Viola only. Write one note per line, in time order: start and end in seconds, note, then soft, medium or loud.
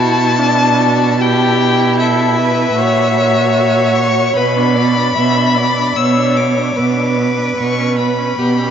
0.00 0.40 E4 medium
0.38 1.19 D4 medium
1.19 2.74 E4 medium
2.78 4.33 F#4 medium
4.37 4.58 B3 medium
4.57 4.78 D4 medium
4.77 4.98 B3 medium
4.97 5.16 D4 medium
5.17 5.38 B3 medium
5.37 5.59 D4 medium
5.57 5.79 B3 medium
5.77 5.97 D4 medium
5.97 6.19 B3 medium
6.17 6.39 D4 medium
6.37 6.59 B3 medium
6.57 6.76 D4 medium
6.77 6.98 B3 medium
6.97 7.18 D4 medium
7.17 7.39 B3 medium
7.37 7.56 D4 soft
7.57 7.80 B3 medium
7.78 8.00 C#4 soft
7.99 8.19 B3 medium
8.18 8.38 C#4 medium
8.39 8.60 B3 medium
8.59 8.71 C#4 soft